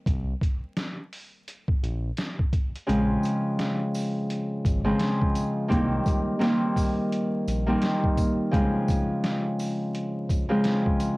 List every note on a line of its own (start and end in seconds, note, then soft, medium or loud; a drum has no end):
0.06 0.34 C2 loud
0.06 kick loud
0.06 closed hi-hat loud
0.41 kick medium
0.41 closed hi-hat medium
0.77 snare loud
0.77 closed hi-hat medium
1.13 open hi-hat soft
1.48 closed hi-hat loud
1.68 kick loud
1.83 2.11 A#1 medium
1.83 closed hi-hat medium
2.17 snare loud
2.17 closed hi-hat medium
2.39 kick medium
2.53 kick medium
2.53 closed hi-hat medium
2.76 closed hi-hat medium
2.87 3.17 A#1 loud
2.87 4.83 C#3 medium
2.87 4.84 F3 medium
2.87 4.84 G#3 medium
2.87 4.85 C4 medium
2.87 closed hi-hat loud
3.23 closed hi-hat medium
3.23 tambourine soft
3.59 snare loud
3.59 closed hi-hat medium
3.95 open hi-hat soft
3.95 tambourine medium
4.30 closed hi-hat loud
4.65 4.93 G#1 loud
4.65 kick loud
4.65 closed hi-hat medium
4.65 tambourine soft
4.84 5.76 C#3 medium
4.84 5.76 F3 medium
4.84 5.76 G#3 medium
4.84 5.32 C4 medium
4.99 snare loud
4.99 closed hi-hat medium
5.22 kick medium
5.35 closed hi-hat medium
5.35 tambourine medium
5.68 5.99 C2 loud
5.68 6.38 D#3 medium
5.68 6.38 G3 medium
5.68 6.36 A#3 medium
5.68 6.36 C4 loud
5.68 kick loud
5.68 closed hi-hat loud
6.06 kick medium
6.06 closed hi-hat medium
6.06 tambourine soft
6.39 7.66 D#3 medium
6.39 7.66 G3 medium
6.39 7.67 A#3 medium
6.39 7.68 C4 loud
6.39 snare loud
6.39 closed hi-hat medium
6.76 kick medium
6.76 open hi-hat soft
6.76 tambourine medium
7.12 closed hi-hat loud
7.48 7.76 A#1 medium
7.48 closed hi-hat medium
7.48 tambourine soft
7.67 8.58 D#3 medium
7.67 8.58 G3 medium
7.67 8.14 A#3 medium
7.67 8.14 C4 loud
7.82 snare loud
7.82 closed hi-hat medium
8.04 kick medium
8.17 kick medium
8.17 closed hi-hat medium
8.17 tambourine medium
8.51 10.48 C#3 medium
8.51 10.48 F3 medium
8.51 10.48 G#3 medium
8.51 10.50 C4 loud
8.51 kick loud
8.51 closed hi-hat loud
8.88 kick medium
8.88 closed hi-hat medium
8.88 tambourine soft
9.24 snare loud
9.24 closed hi-hat medium
9.59 open hi-hat soft
9.59 tambourine medium
9.95 closed hi-hat loud
10.29 kick loud
10.29 closed hi-hat medium
10.29 tambourine soft
10.49 11.17 C#3 medium
10.49 11.17 F3 medium
10.49 11.17 G#3 medium
10.49 10.96 C4 loud
10.64 snare loud
10.64 closed hi-hat medium
10.86 kick medium
11.00 closed hi-hat medium
11.00 tambourine medium